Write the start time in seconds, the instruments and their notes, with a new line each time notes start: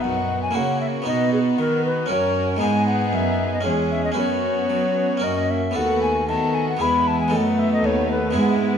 Already playing: harpsichord B3 D#4 F#4, viola section B3, violin section D#4
0.02 cello section F#2, harpsichord F#2, violin section F#4, recorder F#5
0.42 recorder G#5
0.51 harpsichord A#3 E4 F#4
0.55 harpsichord C#3, cello section C#3, viola section A#3, violin section C#4 F#4, recorder F#5
0.81 recorder E5
1.02 harpsichord B3 D#4 F#4
1.07 harpsichord B2, cello section B2, viola section B3, violin section D#4, recorder D#5
1.33 recorder G#4
1.59 harpsichord D#3, cello section D#3, violin section D#4 F#4, recorder A#4
1.85 recorder B4
2.06 harpsichord C#4 F#4 A#4, violin section F#4
2.10 cello section F#2, harpsichord F#2, viola section C#4, violin section A#4, recorder C#5
2.56 harpsichord G#3 B3 D#4
2.61 cello section G#2, harpsichord G#2 G#4, viola section B3, violin section D#4 G#4, recorder G#5
2.88 recorder F#5
3.13 harpsichord F#2, cello section F#2, recorder E5
3.54 recorder D#5
3.61 harpsichord C#4 G#4
3.65 harpsichord E2, cello section E2, viola section G#3, violin section C#4 G#4, recorder C#5
3.91 recorder E5
4.05 recorder D#5
4.12 harpsichord C#4 F#4 B4
4.16 harpsichord F#2, cello section F#2, viola section B3, violin section C#4 F#4, recorder C#5
4.70 harpsichord F#3, cello section F#3
5.17 harpsichord C#4 F#4 A#4
5.22 harpsichord F#2, cello section F#2, viola section A#3, violin section C#4 F#4, recorder D#5
5.51 recorder E5
5.71 harpsichord B3 F#4 A4
5.76 harpsichord D#2, cello section D#2, viola section A3, violin section B3 F#4, recorder F#5
6.02 recorder G#5
6.28 cello section D#3, harpsichord D#3, viola section A3, violin section B3 F#4, recorder A5
6.54 recorder G#5
6.69 recorder F#5
6.77 viola section G#3, harpsichord B3 E4 G#4
6.81 cello section E2, harpsichord E2, violin section B3 E4, recorder B5
7.07 recorder A5
7.20 recorder G#5
7.28 harpsichord B3 D#4 A4, violin section B3
7.32 harpsichord F#2, cello section F#2, viola section A3, violin section D#4, recorder G#5
7.37 recorder F#5
7.59 recorder E5
7.73 recorder D#5
7.84 cello section D#2, harpsichord D#2, recorder C#5
8.11 recorder B4
8.31 harpsichord B3 E4 G#4
8.35 harpsichord G#2, cello section G#2, viola section G#3, violin section B3 E4
8.61 violin section B3